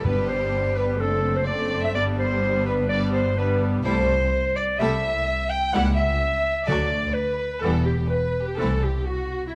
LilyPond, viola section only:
\new Staff \with { instrumentName = "Viola section" } { \time 4/4 \key g \major \tempo 4 = 126 <g b>2 <a c'>4 <a c'>4 | <g b>2 <g b>4 <g b>4 | \key a \dorian <g a>8 r4. <g a>8 r4. | <g ais>8 r4. <fis a>8 r4. |
<e g>8 r4. <e a>8 r4. | }